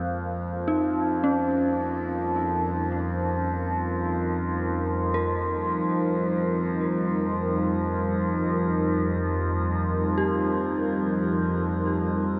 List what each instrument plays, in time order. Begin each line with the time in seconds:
Already playing: synth drone F2 F3, ambient pad G#3 F4 A#4
0.12 ambient pad F2
0.46 ambient pad G3
0.68 synth bell D#4
1.24 synth bell C#4
2.20 ambient pad D#4
5.14 synth bell A#4
10.18 synth bell G4